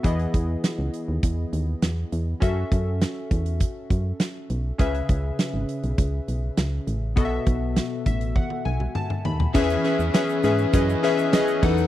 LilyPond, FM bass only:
\new Staff \with { instrumentName = "FM bass" } { \clef bass \time 4/4 \key e \major \tempo 4 = 101 e,8 e,8 r16 cis,16 r16 dis,16 e,8 dis,8 e,8 e,8 | fis,8 fis,8. r16 e,8. r16 fis,8 r8 b,,8 | cis,8 cis,8 r16 gis,,16 r16 b,,16 cis,8 b,,8 cis,8 a,,8 | b,,8 b,,8. r16 a,,8. r16 b,,8 r8 dis,8 |
e,8 r16 e,16 r8 gis,8 fis,8 r4 e,8 | }